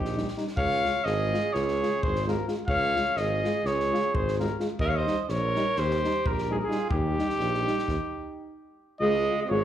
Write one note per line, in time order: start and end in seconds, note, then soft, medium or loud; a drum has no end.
0.00 0.28 A#1 medium
0.00 0.30 D#4 medium
0.00 0.30 G4 medium
0.05 snare soft
0.16 0.25 G3 medium
0.16 0.24 D#4 soft
0.16 snare soft
0.28 snare soft
0.36 0.44 G3 soft
0.36 0.45 D#4 medium
0.36 snare soft
0.47 snare soft
0.56 0.83 C#2 medium
0.56 1.08 C#5 loud
0.56 1.06 F5 loud
0.56 kick loud
0.84 0.93 G#3 soft
0.84 0.93 F4 medium
0.84 snare soft
1.04 1.32 G#1 loud
1.04 1.55 G#4 medium
1.04 1.55 D#5 loud
1.04 snare soft
1.32 1.41 G#3 medium
1.32 1.41 F4 medium
1.32 snare soft
1.53 1.81 C#2 loud
1.53 2.03 G#4 medium
1.53 2.04 C#5 medium
1.53 snare soft
1.68 snare soft
1.81 1.91 G#3 soft
1.81 1.90 F4 medium
1.81 snare soft
2.03 2.39 G#1 medium
2.03 2.27 G#4 medium
2.03 2.27 C5 medium
2.03 kick loud
2.15 snare soft
2.27 2.35 G#3 medium
2.27 2.35 F4 medium
2.27 2.46 G4 soft
2.27 2.46 A#4 medium
2.27 snare soft
2.46 2.56 G#3 medium
2.46 2.54 F4 medium
2.46 snare soft
2.67 2.94 C#2 medium
2.67 3.22 C#5 loud
2.67 3.18 F5 loud
2.67 kick medium
2.95 3.04 G#3 medium
2.95 3.04 F4 medium
2.95 snare soft
3.15 3.43 G#1 medium
3.15 3.68 D#5 loud
3.15 snare soft
3.21 3.68 G#4 medium
3.44 3.53 G#3 medium
3.44 3.52 F4 medium
3.44 snare soft
3.64 3.91 C#2 loud
3.64 4.17 G#4 medium
3.64 4.16 C#5 loud
3.64 snare soft
3.80 snare soft
3.93 4.01 G#3 medium
3.93 4.01 F4 medium
3.93 snare soft
4.14 4.49 G#1 medium
4.14 4.40 G#4 medium
4.14 4.39 C5 medium
4.14 kick loud
4.28 snare soft
4.38 4.47 G#3 medium
4.38 4.46 F4 soft
4.38 4.58 G4 medium
4.38 4.58 A#4 medium
4.38 snare soft
4.60 4.68 G#3 medium
4.60 4.67 F4 medium
4.60 snare soft
4.79 5.05 D#2 medium
4.79 4.91 A#4 loud
4.79 4.88 D#5 loud
4.79 kick medium
4.87 4.99 C#5 medium
4.87 4.97 F5 medium
4.96 5.22 C5 medium
4.96 5.21 D#5 medium
5.06 5.15 G3 medium
5.06 5.15 D#4 medium
5.06 snare soft
5.21 5.33 C5 soft
5.21 5.31 D#5 medium
5.28 5.55 A#1 medium
5.28 5.81 A#4 medium
5.28 5.80 C#5 loud
5.28 snare soft
5.56 5.64 G3 medium
5.56 5.64 D#4 medium
5.56 snare soft
5.76 6.04 D#2 loud
5.76 6.30 G4 loud
5.76 6.28 C5 loud
5.76 snare soft
5.91 snare soft
6.03 6.12 G3 medium
6.03 6.12 D#4 medium
6.03 snare soft
6.26 6.61 A#1 medium
6.26 6.53 A#4 medium
6.26 kick loud
6.30 6.55 G4 medium
6.38 snare soft
6.49 6.58 G3 medium
6.49 6.57 D#4 soft
6.49 6.57 G#4 medium
6.53 6.60 F4 medium
6.53 6.65 A#4 medium
6.58 6.67 G4 medium
6.64 6.92 F4 medium
6.64 6.90 G#4 medium
6.69 6.77 G3 medium
6.69 6.77 D#4 medium
6.69 snare soft
6.90 7.17 D#2 medium
6.90 8.59 D#4 medium
6.90 8.58 G4 loud
6.90 kick loud
7.18 7.26 G3 medium
7.18 7.26 D#4 medium
7.18 snare soft
7.29 snare soft
7.39 7.65 A#1 medium
7.39 snare soft
7.54 snare soft
7.66 7.75 G3 medium
7.66 7.75 D#4 medium
7.66 snare soft
7.78 snare soft
7.88 7.95 D#2 medium
7.88 kick medium
7.88 snare soft
9.00 9.27 C#2 medium
9.00 9.41 G#3 loud
9.00 9.13 G#3 medium
9.00 9.12 F4 medium
9.00 9.40 D#5 loud
9.28 9.38 G#3 medium
9.28 9.37 F4 medium
9.43 9.53 C4 medium
9.43 9.51 D#5 medium
9.49 9.64 G#1 loud
9.49 9.61 G#3 medium
9.49 9.64 G#3 medium
9.49 9.61 F4 medium
9.49 9.64 C#5 loud